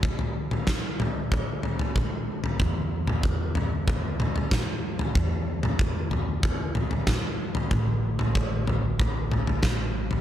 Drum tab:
SD |----o-----------|------------o---|------------o---|------------o---|
T2 |---o--o-----o---|---o------o-o---|---o------o-o---|---o------o-o---|
FT |oo-o--o-o-oo---o|o--o--o-o-oo---o|o--o--o-o-oo---o|o--o--o-o-oo---o|
BD |o---o---o---o---|o---o---o---o---|o---o---o---o---|o---o---o---o---|